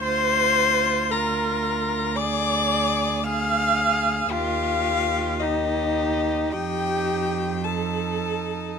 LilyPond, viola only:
\new Staff \with { instrumentName = "Viola" } { \time 12/8 \key bes \major \tempo 4. = 55 c''4. bes'4. d''4. f''4. | f'4. ees'4. g'4. a'4. | }